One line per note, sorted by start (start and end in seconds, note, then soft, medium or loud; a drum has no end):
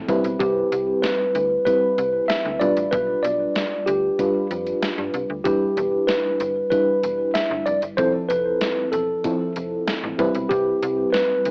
0.00 0.11 F3 medium
0.00 0.09 C4 medium
0.08 0.20 C2 medium
0.08 1.26 G3 medium
0.08 1.26 C4 medium
0.08 1.27 E4 medium
0.08 1.27 B4 medium
0.08 kick medium
0.08 closed hi-hat medium
0.24 0.36 B1 medium
0.24 closed hi-hat soft
0.39 0.64 C2 loud
0.39 1.05 G4 medium
0.39 kick loud
0.39 closed hi-hat medium
0.72 0.95 C2 medium
0.72 closed hi-hat medium
1.02 1.64 B4 medium
1.02 snare loud
1.02 closed hi-hat medium
1.35 1.59 D2 medium
1.35 closed hi-hat medium
1.65 2.59 G3 medium
1.65 2.61 C4 medium
1.65 2.61 E4 medium
1.65 2.25 B4 medium
1.65 2.60 B4 medium
1.65 kick medium
1.65 closed hi-hat medium
1.98 2.22 C2 medium
1.98 closed hi-hat medium
2.28 2.62 E5 loud
2.28 snare loud
2.28 closed hi-hat medium
2.45 2.57 D2 medium
2.60 2.73 B1 medium
2.60 3.79 G3 medium
2.60 3.79 D4 medium
2.60 3.79 F4 medium
2.60 3.79 B4 medium
2.60 2.93 D5 medium
2.60 closed hi-hat medium
2.77 2.89 A1 medium
2.77 closed hi-hat soft
2.91 3.16 B1 loud
2.91 3.21 B4 loud
2.91 kick loud
2.91 closed hi-hat medium
3.23 3.48 B1 medium
3.23 3.89 D5 medium
3.23 closed hi-hat medium
3.56 snare loud
3.56 closed hi-hat medium
3.86 4.11 D2 medium
3.86 4.46 G4 medium
3.86 closed hi-hat medium
4.19 5.37 G3 medium
4.19 5.37 D4 medium
4.19 5.37 F4 medium
4.19 5.37 B4 medium
4.19 kick medium
4.19 closed hi-hat medium
4.51 4.74 F2 medium
4.51 closed hi-hat medium
4.67 closed hi-hat soft
4.82 snare loud
4.82 closed hi-hat medium
4.98 5.10 G2 medium
5.14 5.26 C2 medium
5.14 closed hi-hat medium
5.30 5.42 D2 medium
5.44 5.69 E1 loud
5.44 6.63 G3 medium
5.44 6.63 D4 medium
5.44 6.63 E4 medium
5.44 6.10 G4 medium
5.44 6.63 B4 medium
5.44 kick loud
5.44 closed hi-hat medium
5.77 6.01 E1 loud
5.77 closed hi-hat medium
6.07 6.69 B4 medium
6.07 snare loud
6.07 closed hi-hat medium
6.40 6.64 G1 medium
6.40 closed hi-hat medium
6.70 7.89 G3 medium
6.70 7.89 D4 medium
6.70 7.90 E4 medium
6.70 7.30 B4 medium
6.70 7.90 B4 medium
6.70 kick medium
6.70 closed hi-hat medium
7.03 7.27 E1 medium
7.03 closed hi-hat medium
7.34 7.67 E5 medium
7.34 snare loud
7.34 closed hi-hat medium
7.51 7.63 G1 medium
7.66 7.78 F1 medium
7.66 7.80 D5 medium
7.66 closed hi-hat medium
7.82 7.94 G1 medium
7.82 closed hi-hat soft
7.97 8.22 F1 loud
7.97 9.15 F3 medium
7.97 9.16 C4 medium
7.97 9.16 E4 medium
7.97 9.16 A4 medium
7.97 8.11 C5 loud
7.97 kick loud
7.97 closed hi-hat medium
8.29 8.54 F1 loud
8.29 8.88 B4 medium
8.29 closed hi-hat medium
8.61 snare loud
8.61 closed hi-hat medium
8.92 9.17 E1 medium
8.92 9.52 A4 medium
8.92 closed hi-hat medium
9.24 10.19 F3 medium
9.24 10.18 C4 medium
9.24 10.18 E4 medium
9.24 10.20 A4 medium
9.24 kick medium
9.24 closed hi-hat medium
9.56 9.80 F1 medium
9.56 closed hi-hat medium
9.87 snare loud
9.87 closed hi-hat medium
10.03 10.15 A1 medium
10.18 10.31 C2 medium
10.18 11.36 G3 medium
10.18 11.37 C4 medium
10.18 11.37 E4 medium
10.18 11.37 B4 loud
10.18 kick medium
10.18 closed hi-hat medium
10.35 10.47 B1 medium
10.35 closed hi-hat soft
10.49 10.74 C2 loud
10.49 11.09 G4 medium
10.49 kick loud
10.49 closed hi-hat medium
10.82 11.06 C2 loud
10.82 closed hi-hat medium
11.13 11.51 B4 loud
11.13 snare loud
11.13 closed hi-hat medium
11.45 11.51 D2 medium
11.45 closed hi-hat medium